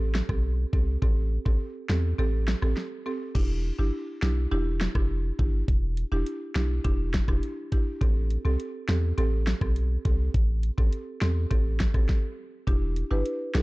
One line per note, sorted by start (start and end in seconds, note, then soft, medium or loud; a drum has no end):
0.00 0.22 A1 loud
0.15 snare loud
0.29 0.66 B1 medium
0.29 0.43 C4 medium
0.29 0.43 G4 medium
0.29 0.43 A4 medium
0.29 kick medium
0.29 cross-stick medium
0.73 0.97 C2 medium
0.73 0.86 C4 medium
0.73 0.87 G4 medium
0.73 0.87 A4 medium
0.73 kick loud
1.02 1.39 A1 loud
1.02 1.42 C4 medium
1.02 1.42 G4 medium
1.02 1.43 A4 medium
1.02 kick loud
1.46 1.58 A1 medium
1.46 1.59 C4 medium
1.46 1.59 G4 medium
1.46 1.60 A4 medium
1.46 kick medium
1.89 2.14 E2 medium
1.89 2.03 C4 medium
1.89 2.03 G4 medium
1.89 2.03 A4 medium
1.89 snare loud
2.18 2.55 A1 loud
2.18 2.32 C4 medium
2.18 2.32 G4 medium
2.18 2.32 A4 loud
2.48 snare loud
2.62 2.75 A1 medium
2.62 2.76 C4 medium
2.62 2.76 G4 medium
2.62 2.76 A4 medium
2.62 cross-stick medium
2.77 snare medium
3.06 3.19 C4 medium
3.06 3.20 G4 medium
3.06 3.20 A4 medium
3.35 3.72 E1 loud
3.35 3.75 D4 medium
3.35 3.75 E4 medium
3.35 3.76 G4 medium
3.35 kick loud
3.35 crash medium
3.79 3.91 G1 medium
3.79 3.92 D4 medium
3.79 3.92 E4 medium
3.79 3.93 G4 medium
4.22 4.47 B1 medium
4.22 4.36 D4 medium
4.22 4.36 E4 medium
4.22 4.36 G4 medium
4.22 snare loud
4.51 4.88 E1 loud
4.51 4.92 D4 medium
4.51 4.92 E4 medium
4.51 4.92 G4 loud
4.81 snare loud
4.95 5.32 F1 medium
4.95 5.09 D4 medium
4.95 5.09 E4 medium
4.95 5.09 G4 medium
4.95 kick medium
4.95 cross-stick medium
5.39 5.63 G1 medium
5.39 5.53 D4 medium
5.39 5.53 E4 medium
5.39 5.53 G4 medium
5.39 kick loud
5.68 6.05 E1 loud
5.68 kick loud
5.68 closed hi-hat medium
5.97 closed hi-hat medium
6.12 6.24 E1 medium
6.12 6.25 D4 medium
6.12 6.25 E4 medium
6.12 6.26 G4 medium
6.26 closed hi-hat medium
6.55 6.80 B1 medium
6.55 6.69 D4 medium
6.55 6.69 E4 medium
6.55 6.69 G4 medium
6.55 snare loud
6.55 closed hi-hat medium
6.84 7.21 E1 loud
6.84 7.25 D4 medium
6.84 7.25 E4 medium
6.84 7.25 G4 loud
6.84 kick medium
6.84 closed hi-hat medium
7.14 kick medium
7.14 snare loud
7.14 closed hi-hat medium
7.28 7.40 E1 medium
7.28 7.42 D4 medium
7.28 7.42 E4 medium
7.28 7.42 G4 medium
7.28 kick loud
7.28 cross-stick medium
7.43 closed hi-hat medium
7.72 7.86 D4 medium
7.72 7.86 E4 medium
7.72 7.86 G4 medium
7.72 kick medium
7.72 closed hi-hat medium
8.01 8.38 A1 loud
8.01 8.41 C4 medium
8.01 8.41 G4 medium
8.01 8.42 A4 loud
8.01 kick loud
8.01 closed hi-hat medium
8.30 closed hi-hat medium
8.45 8.57 C2 medium
8.45 8.58 C4 medium
8.45 8.59 G4 medium
8.45 8.59 A4 medium
8.60 closed hi-hat medium
8.89 9.13 E2 loud
8.89 9.02 C4 medium
8.89 9.02 G4 medium
8.89 9.02 A4 medium
8.89 snare loud
8.89 closed hi-hat medium
9.18 9.54 A1 loud
9.18 9.58 C4 medium
9.18 9.58 G4 medium
9.18 9.58 A4 loud
9.18 closed hi-hat medium
9.47 snare loud
9.47 closed hi-hat medium
9.61 9.98 B1 medium
9.61 9.75 C4 medium
9.61 9.75 G4 medium
9.61 9.75 A4 medium
9.61 kick medium
9.61 cross-stick medium
9.76 closed hi-hat medium
10.05 10.29 C2 medium
10.05 10.19 C4 medium
10.05 10.19 G4 medium
10.05 10.19 A4 medium
10.05 kick loud
10.05 closed hi-hat medium
10.34 10.71 A1 loud
10.34 kick loud
10.34 closed hi-hat medium
10.63 closed hi-hat medium
10.78 10.90 A1 medium
10.78 10.91 C4 medium
10.78 10.91 G4 medium
10.78 10.92 A4 medium
10.78 kick medium
10.93 closed hi-hat medium
11.22 11.46 E2 medium
11.22 11.35 C4 medium
11.22 11.35 G4 medium
11.22 11.35 A4 medium
11.22 snare loud
11.22 closed hi-hat medium
11.51 11.87 A1 loud
11.51 11.91 C4 medium
11.51 11.91 G4 medium
11.51 11.91 A4 loud
11.51 kick medium
11.51 closed hi-hat medium
11.80 kick medium
11.80 snare loud
11.80 closed hi-hat medium
11.94 12.06 A1 medium
11.94 12.08 C4 medium
11.94 12.08 G4 medium
11.94 12.08 A4 medium
11.94 kick loud
11.94 cross-stick medium
12.09 kick loud
12.09 snare medium
12.67 13.04 E1 loud
12.67 13.07 D4 medium
12.67 13.08 E4 medium
12.67 13.08 G4 loud
12.67 kick loud
12.67 closed hi-hat medium
12.96 closed hi-hat medium
13.11 13.23 G1 medium
13.11 13.51 D4 medium
13.11 13.51 E4 medium
13.11 13.51 G4 medium
13.11 13.21 B4 medium
13.26 closed hi-hat medium
13.54 13.62 B1 medium
13.54 13.62 D4 medium
13.54 13.62 E4 medium
13.54 13.62 G4 medium
13.54 13.62 A4 medium
13.54 snare loud
13.54 closed hi-hat medium